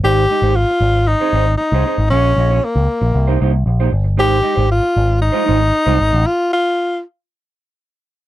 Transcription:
<<
  \new Staff \with { instrumentName = "Clean electric guitar" } { \time 4/4 \key f \minor \tempo 4 = 116 <aes ees' g' c''>8 <aes ees' g' ees''>16 <aes ees' g' c''>16 r4 r16 <c' ees' aes' c''>16 <c' ees' aes' c''>16 r8 <c' ees' aes' c''>16 <c' ees' aes' c''>16 r16 | <des' f' aes' des''>8 <des' f' aes' ees''>16 <des' f' aes' des''>16 r4 r16 <bes ees' g' c''>16 <bes ees' g' c''>16 r8 <bes ees' g' c''>8 r16 | <aes ees' g' c''>8 <aes ees' g' ees''>16 <aes ees' g' c''>16 r4 r16 <aes ees' f' c''>16 <aes ees' f' c''>16 r8 <aes ees' f' c''>8 r16 | r1 | }
  \new Staff \with { instrumentName = "Tenor saxophone" } { \time 4/4 \key f \minor g'4 f'4 ees'4 ees'4 | des'4 bes4. r4. | g'4 f'4 ees'2 | f'8 f'4 r2 r8 | }
  \new Staff \with { instrumentName = "Picked electric bass" } { \clef bass \time 4/4 \key f \minor aes,,8 r16 aes,,8 r16 aes,,8. r16 aes,,8 r16 c,16 r16 aes,,16 | bes,,8 bes,,8 r16 des,16 r16 bes,,16 c,8 c,8 bes,,8 g,,8 | aes,,8 r16 aes,,8 r16 aes,,8. r16 aes,,8 r16 c,16 aes,,16 a,,16 | r1 | }
>>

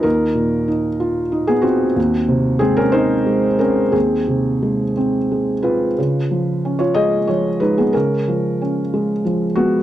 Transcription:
<<
  \new Staff \with { instrumentName = "Felt piano" } { \time 6/8 \key aes \dorian \tempo 4. = 61 <ees' bes'>2~ <ees' bes'>16 <ces' aes'>16 <c' ges'>8~ | <c' ges'>4 <c' aes'>16 <des' bes'>16 <ees' c''>4 <des' bes'>8 | <c' aes'>4. r4 <f' ces''>8~ | <f' ces''>4~ <f' ces''>16 <f' des''>16 <aes' ees''>8 <f' des''>8 <ees' ces''>16 <ces' aes'>16 |
<des' bes'>2 r8 <ces' ges'>8 | }
  \new Staff \with { instrumentName = "Felt piano" } { \clef bass \time 6/8 \key aes \dorian <ees, f'>8 bes,8 ees'8 f'8 ees'8 f'8 | ees,8 c8 aes8 c'8 aes8 c'8 | ees,8 c8 aes8 c'8 aes8 c'8 | des8 f8 des'8 aes8 f8 aes8 |
des8 f8 des'8 aes8 f8 aes8 | }
>>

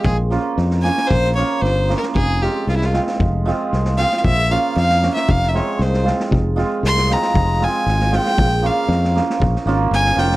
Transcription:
<<
  \new Staff \with { instrumentName = "Fiddle" } { \time 2/4 \key f \minor \tempo 4 = 116 aes'8 r4 aes''8 | c''8 des''8 \tuplet 3/2 { c''4 bes'8 } | aes'8 g'8 f'32 e'32 f'16 r8 | r4. f''16. f''32 |
e''8 f''8 \tuplet 3/2 { f''4 e''8 } | f''16. e''32 des''8 c''8 r8 | r4 c'''8 bes''8~ | bes''8 aes''4 g''8~ |
g''8 f''4 r8 | r4 aes''8 g''8 | }
  \new Staff \with { instrumentName = "Hammered dulcimer" } { \time 2/4 \key f \minor r8 <f bes des' f'>8 r8 <f bes des' f'>8 | r8 <f bes des' f'>8 r8 <f bes des' f'>8 | r8 <f aes c' f'>8 r8 <f aes c' f'>8 | r8 <f aes c' f'>8 r8 <f aes c' f'>8 |
r8 <f bes des' f'>8 r8 <f bes des' f'>8 | r8 <f aes c' f'>8 r8 <f aes c' f'>8 | r8 <f aes c' f'>8 r8 <f aes c' f'>8 | r8 <f aes c' f'>8 r8 <f aes c' f'>8 |
r8 <f bes des' f'>8 r8 <f bes des' f'>8 | r8 <f bes des' f'>8 r8 <f bes des' f'>8 | }
  \new Staff \with { instrumentName = "Fingered electric bass" } { \clef bass \time 2/4 \key f \minor bes,,4 f,4 | bes,,4 g,,4 | f,,4 c,4 | f,,4 c,4 |
bes,,4 f,4 | f,,4 c,4 | f,,4 c,4 | f,,4 aes,,4 |
bes,,4 f,4 | bes,,8 aes,,8 g,,8 f,,8 | }
  \new DrumStaff \with { instrumentName = "Drums" } \drummode { \time 2/4 bd8 sn8 sn16 sn16 sn16 sn16 | bd16 sn16 sn8 sn8 sn16 sn16 | bd8 sn8 sn16 sn16 sn16 sn16 | bd8 sn8 sn16 sn16 sn16 sn16 |
bd8 sn8 sn16 sn16 sn16 sn16 | bd16 sn16 sn8 sn16 sn16 sn16 sn16 | bd8 sn8 sn16 sn16 sn16 sn16 | bd8 sn8 sn16 sn16 sn16 sn16 |
bd8 sn8 sn16 sn16 sn16 sn16 | bd16 sn16 sn8 sn16 sn16 sn16 sn16 | }
>>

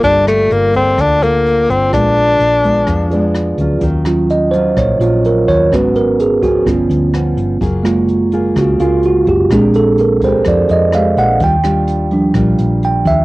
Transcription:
<<
  \new Staff \with { instrumentName = "Tine electric piano" } { \time 4/4 \key bes \major \tempo 4 = 127 << { <f' a' d''>1 | <f' aes' ces'' d''>2~ <f' aes' ces'' d''>8 <f' aes' ces'' d''>4. | \key ees \minor r4 ees''8 c''8 des''8 f'8 bes'8 des''8 | ces''8 bes'8 aes'8 ges'8 r2 |
r2 ges'8 f'8 ges'8 g'8 | aes'8 a'8 bes'8 c''8 d''8 ees''8 f''8 ges''8 | g''2 r4 g''8 fes''8 | } \\ { r1 | r1 | r8 <ges des' f'>2.~ <ges des' f'>8 | <ces' des' ges'>2 <b cis' f'>2 |
r8 <aes bes f'>2.~ <aes bes f'>8 | <aes c' d'>1 | r4. <f g d'>4. r4 | } >> }
  \new Staff \with { instrumentName = "Tenor saxophone" } { \time 4/4 \key bes \major d'8 a8 bes8 c'8 d'8 bes4 c'8 | d'2. r4 | \key ees \minor r1 | r1 |
r1 | r1 | r1 | }
  \new Staff \with { instrumentName = "Nylon-string guitar" } { \time 4/4 \key bes \major << { <bes f' a'>4. <bes f' a'>4 <bes f' a'>4. | <aes ces' d'>4 r8 <aes ces' d'>4 <aes ces' d'>4 <fis cis' f'>8~ | \key ees \minor <fis cis' f'>4 r8 <ges des' f'>4 <ges des' f'>4. | <ges ces' des'>4 r8 <f ces' des'>4. <f b cis'>4 |
<bes f' aes'>4. <bes f' aes'>4 <bes f' aes'>4. | <aes d' g'>4 r8 <aes d' g'>4. <aes d' g'>8 r8 | <g d' f'>8 <g d' f'>4. <g d' f'>2 | } \\ { g2 d2 | bes,2 f2 | ees2 bes,2 | aes,2 g,2 |
ges2 des2 | bes,2 f2 | ees2 bes,2 | } >> }
  \new Staff \with { instrumentName = "Fingered electric bass" } { \clef bass \time 4/4 \key bes \major g,,4 g,,4 d,4. g,,8 | bes,,4 bes,,4 f,4. d,8 | \key ees \minor ees,2 bes,,8 bes,,4 ees,8 | aes,,2 g,,8 d,4 g,,8 |
ges,,2 des,8 des,4 ges,,8 | bes,,2 f,8 f,4 bes,,8 | ees,2 bes,,8 bes,,4 ees,8 | }
  \new DrumStaff \with { instrumentName = "Drums" } \drummode { \time 4/4 <hh bd>8 <hh ss>8 hh8 <hh bd>8 <hh bd ss>8 hh8 hh8 <hh bd>8 | <hh bd ss>8 hh8 hh8 <hh bd>8 <hh bd ss>8 hh8 <hh ss>8 <hh bd>8 | <hh bd>8 <hh ss>8 hh8 hh8 <hh bd ss>8 hh8 hh8 <hh bd>8 | <hh bd ss>8 hh8 hh8 <hh bd>8 <hh bd ss>8 hh8 <hh ss>8 hh8 |
<hh bd>8 <hh ss>8 hh8 hh8 <hh bd ss>8 hh8 hh8 <hh bd>8 | <hh bd ss>8 hh8 hh8 <hh bd>8 <hh bd ss>8 hh8 <hh ss>8 hh8 | <hh bd>8 <hh ss>8 hh8 hh8 <hh bd ss>8 hh8 hh8 <hh bd>8 | }
>>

